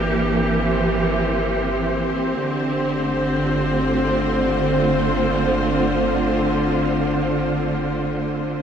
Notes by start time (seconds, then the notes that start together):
Already playing: G1 E3 A#3 C4 D4 G4 D5
0.60 C5
2.39 G1 D3
2.96 A3
3.28 F4